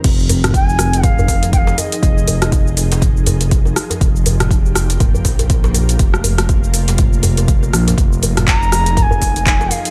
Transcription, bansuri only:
0.55 1.05 G#5 loud
1.04 1.52 F5 loud
1.53 1.79 F5 loud
1.53 1.58 G5 medium
1.78 2.77 D#5 medium
8.48 8.97 A#5 loud
8.97 9.03 A#5 loud
9.02 9.46 G#5 loud
9.46 9.73 G#5 loud
9.71 9.90 F5 medium

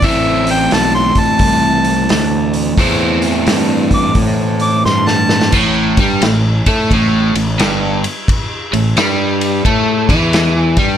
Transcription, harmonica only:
0.05 0.49 E5 loud
0.51 0.73 G5 medium
0.74 0.94 A5 medium
0.95 1.21 C6 loud
1.19 2.53 A5 loud
3.94 4.17 D6 medium
4.62 4.85 D6 medium
4.85 5.09 C6 loud
5.08 5.53 A5 loud

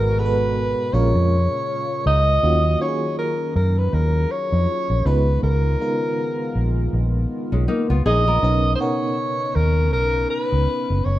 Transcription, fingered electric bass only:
0.00 0.73 G#1 loud
0.93 1.11 A#1 loud
1.15 1.46 F2 medium
2.06 2.37 C#2 medium
2.43 2.75 D#2 loud
3.56 3.87 F#2 medium
3.93 4.24 D#2 medium
4.52 4.66 F2 medium
4.90 5.03 A#1 medium
5.06 5.37 C#2 medium
5.43 5.74 C#2 loud
6.55 6.87 A#1 medium
6.93 7.24 A#1 medium
7.52 7.65 B1 medium
7.90 8.03 C#2 medium
8.06 8.37 A#1 medium
8.43 8.74 B1 loud
9.56 9.93 D#2 medium
9.93 10.25 B1 medium
10.52 10.66 C#2 medium
10.90 11.03 F#1 medium
11.06 11.19 F#1 medium

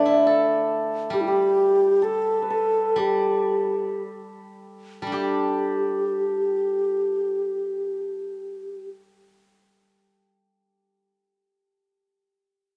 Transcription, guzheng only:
0.00 2.02 D3 soft
0.00 1.34 A3 soft
0.00 1.57 D4 soft
0.06 1.80 E4 soft
0.27 2.03 A4 soft
1.10 2.95 G3 soft
2.96 5.01 G3 soft
5.02 11.09 G3 soft
5.07 9.83 D4 soft
5.12 9.12 G4 soft

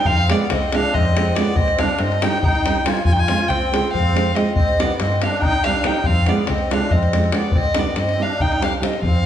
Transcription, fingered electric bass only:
0.06 0.33 F2 loud
0.52 0.78 C2 medium
0.95 1.33 F2 medium
1.56 1.83 C2 medium
2.00 2.26 G2 loud
2.43 2.81 C2 medium
3.06 3.32 F2 medium
3.49 3.76 C2 loud
3.94 4.32 F2 medium
4.56 4.82 C2 medium
5.01 5.27 G2 loud
5.45 5.82 C2 medium
6.06 6.32 F2 medium
6.49 6.75 C2 medium
6.92 7.30 F2 medium
7.55 7.81 C2 medium
7.97 8.23 G2 medium
8.41 8.78 C2 medium
9.02 9.26 F2 medium

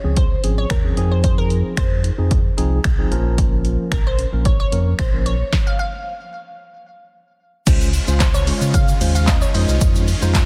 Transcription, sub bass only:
0.04 0.36 C#2 medium
0.44 0.66 G#1 loud
0.71 0.92 D#2 medium
0.97 1.63 F2 loud
1.77 2.11 F2 medium
2.19 2.51 F2 medium
2.58 2.80 C2 loud
2.85 3.07 C2 loud
3.11 3.77 A#1 loud
3.92 4.25 A#1 medium
4.33 4.65 A#1 medium
4.72 4.94 F2 loud
4.99 5.43 A#1 loud
7.67 8.01 C#2 loud
8.08 8.52 C#2 medium
8.61 8.94 C#3 medium
9.00 9.45 D#2 loud
9.54 9.66 F2 medium
9.68 9.79 C2 loud
9.81 10.15 F2 loud
10.22 10.46 F2 medium

